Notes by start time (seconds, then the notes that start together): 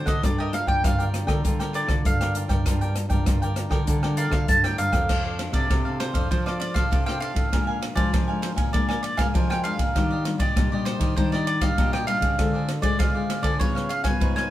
Already playing: A2 A3 C4 F#4
0.05 D3 C5 D5 D#5 F#5, kick, cross-stick, closed hi-hat
0.22 G2 G3 D4 F4 A#4 D5 G5, kick, cross-stick, closed hi-hat
0.38 A#4 D5 D#5 G5
0.53 D4 F4 A#4 F5, muted cavaquinho stroke, cross-stick, closed hi-hat
0.66 G2 A#4 D5 G5, kick
0.83 G2 D3 F4 A#4 D5 F5 G5, kick, cross-stick, closed hi-hat
0.99 D4 F4 A#4 D5 G5, closed hi-hat
1.14 cross-stick, closed hi-hat
1.27 D3 D4 F4 A#4 D5 G5, kick, cross-stick, closed hi-hat
1.44 D3 G3 D4 F4 A#4 D5 G5, kick, closed hi-hat
1.59 A#4 D5 G5, cross-stick, closed hi-hat
1.73 F4 A#4 D5 G5, closed hi-hat
1.87 D3 D4 F4 A#4, muted cavaquinho stroke, kick, cross-stick, closed hi-hat
2.05 G2 D3 F5, kick, closed hi-hat
2.20 A#4 D5 G5, cross-stick, closed hi-hat
2.34 D4 F4 A#4 D5 G5, closed hi-hat
2.48 G2 A#4 D5 G5, kick, cross-stick, closed hi-hat
2.65 G2 G3 F4 A#4 D5 G5, kick, cross-stick, closed hi-hat
2.81 D4 F4 A#4 D5 G5, closed hi-hat
2.95 muted cavaquinho stroke, cross-stick, closed hi-hat
3.09 G2 D4 F4 A#4 D5 G5, kick, closed hi-hat
3.26 G2 D3 F4 A#4 D5 G5, kick, cross-stick, closed hi-hat
3.42 A#4 D5 G5, closed hi-hat
3.56 D4 F4 A#4, cross-stick, closed hi-hat
3.69 D3 A#4 D5 G5, kick, cross-stick
3.87 D3 G3 F4 A#4 D5 G5, kick, closed hi-hat
4.03 D4 F4 A#4 D5 G5, cross-stick
4.17 F4 A#4 D5 F5 G5, closed hi-hat
4.30 D3 D4 F4 F5, muted cavaquinho stroke, kick, cross-stick
4.48 G2 D3 A5, kick, closed hi-hat
4.64 A2 A#4 D5 G5, cross-stick, closed hi-hat
4.78 G2 D4 F4 A#4 D5 F5 G5, closed hi-hat
4.91 F2 A#4 D5 G5, kick, cross-stick, closed hi-hat
5.09 F2 F3 D4 A4 D5 F5, kick, cross-stick, crash
5.24 A4 D5 F5
5.39 C4 D4 A4, muted cavaquinho stroke, cross-stick, ride
5.52 C3 A4 D5 F5, kick, ride
5.69 C3 D4 A4 D5 F5, kick, cross-stick, ride
5.85 C4 D4 A4 D5 F5
6.00 C5, cross-stick, ride
6.13 F2 C4 D4 A4 D5 F5, kick, ride
6.30 F3 C4 D4 A4 C5 D5 F5, kick, ride
6.46 A4 D5 F5, cross-stick
6.60 C4 D4 A4 D5, muted cavaquinho stroke, ride
6.74 A4 D5 F5, kick, cross-stick, ride
6.91 C3 D4 A4 D5 F5, kick, ride
7.06 C4 D4 A4 D5 F5 G5, cross-stick
7.20 D4 A4 D5 F5, ride
7.35 A2, kick, ride
7.52 A#2 F3 G#3 D4 A#4 F5 G#5, kick, cross-stick, ride
7.67 A#4 F5 G#5
7.81 muted cavaquinho stroke, cross-stick, ride
7.95 F3 G#3 D4 A#4 D5 F5 G#5, kick, ride
8.12 F2 F3 D4 A#4 F5 G#5, kick, cross-stick, ride
8.28 F3 G#3 D4 A#4 F5 G#5
8.42 C5, cross-stick, ride
8.56 A#2 A#4 F5 G#5, kick, ride
8.73 A#2 F3 G#3 A#3 D4 A#4 D5 F5 G#5, kick, ride
8.89 A#4 D5 F5 G#5, cross-stick
9.03 D5, muted cavaquinho stroke, ride
9.17 F3 G#3 D4 A#4 F5 G#5, kick, cross-stick, ride
9.34 F2 F3 D4 A#4 F5 G#5, kick, ride
9.50 A#4 F5 G5 G#5, cross-stick
9.64 F3 G#3 D4 A#4 F5 G#5, ride
9.78 A#2, kick, ride
9.95 D#3 G3 A#3 D4 G4 D5 D#5, kick, cross-stick, ride
10.10 G4 D5 D#5
10.25 G3 A#3 D4, muted cavaquinho stroke, cross-stick, ride
10.38 A#2 G4 D5 D#5, kick, ride
10.56 A#2 G3 A#3 D4 G4 D5 D#5, kick, cross-stick, ride
10.72 G3 A#3 D4 G4 D5 D#5
10.85 C5, cross-stick, ride
10.99 D#3 G4 D5 D#5, kick, ride
11.16 D#3 G3 A#3 D4 G4 C5 D5 D#5, kick, ride
11.32 G4 D5 D#5, cross-stick
11.47 D5, muted cavaquinho stroke, ride
11.61 G3 A#3 D4 G4 D5 D#5 F5, kick, cross-stick, ride
11.78 A#2 D4 G4 D5 D#5, kick, ride
11.93 G4 D5 D#5 G5, cross-stick
12.07 G3 A#3 D4 G4 D5 D#5 F5, ride
12.21 C#3, kick, ride
12.38 D3 G#3 C4 F4 G#4 C5 D5, kick, cross-stick, ride
12.53 G#4 C5 D5
12.68 muted cavaquinho stroke, cross-stick, ride
12.82 G#3 C4 F4 G#4 C5 D5, kick, ride
12.99 D3 G#3 F4 G#4 C5 D5 F5, kick, cross-stick, ride
13.14 G#3 C4 F4 G#4 C5 D5
13.30 cross-stick, ride
13.42 D3 G#4 C5 D5, kick, ride
13.60 C#3 G3 B3 F4 B4 C#5 F5, kick, ride
13.75 B4 C#5 F5, cross-stick
13.89 F5, muted cavaquinho stroke, ride
14.04 G3 B3 F4 B4 C#5 F5 G#5, kick, cross-stick, ride
14.20 G#2 F4 B4 C#5 F5, kick, ride
14.36 B4 C#5 F5 G#5, cross-stick